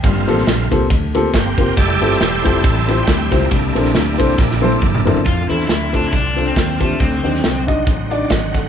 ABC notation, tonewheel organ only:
X:1
M:4/4
L:1/16
Q:"Swing" 1/4=138
K:F
V:1 name="Tonewheel organ"
z12 [B,CG]4 | [GAd]4 [EAc]4 [CEA]3 [CEG]3 [G,B,E]2- | [G,B,E]12- [G,B,E]2 z2 | z16 |
z8 z2 d2 ^f4 |]
V:2 name="Tonewheel organ"
[A,B,CF]6 z8 z2 | [G,A,E]16 | [A,B,DE]16 | [D,A,CF]16 |
[D,^F,CD_E]16 |]